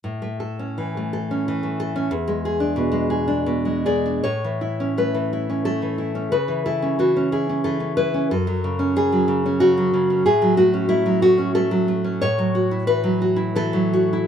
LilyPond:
\new Staff \with { instrumentName = "Nylon-string guitar" } { \time 3/4 \key a \major \tempo 4 = 90 << { r2. | r2 r8 d''8 | cis''4 b'4 a'4 | b'8 a'8 fis'8 gis'8 a'8 b'8 |
a'4 gis'4 fis'4 | gis'8 fis'8 e'8 fis'8 a'8 r8 | \key fis \dorian cis''4 b'4 a'4 | } \\ { a,16 a16 a'16 cis'16 e16 a16 a'16 cis'16 e16 a16 a'16 cis'16 | e,16 gis16 gis'16 d'16 b,16 gis16 gis'16 d'16 b,16 gis16 gis'16 d'16 | a,16 e16 e'16 cis'16 a16 e16 e'16 cis'16 a16 e16 e'16 cis'16 | cis16 e16 e'16 cis'16 e16 cis'16 e'16 cis'16 e16 cis'16 e'16 cis'16 |
fis,16 fis16 cis16 cis'16 cis16 fis16 cis16 cis'16 cis16 fis16 cis16 cis'16 | a,16 fis16 a16 cis'16 a16 fis16 a16 cis'16 a16 fis16 a16 cis'16 | a,16 fis16 fis'16 e'16 e16 fis16 fis'16 e'16 e16 fis16 fis'16 e'16 | } >> }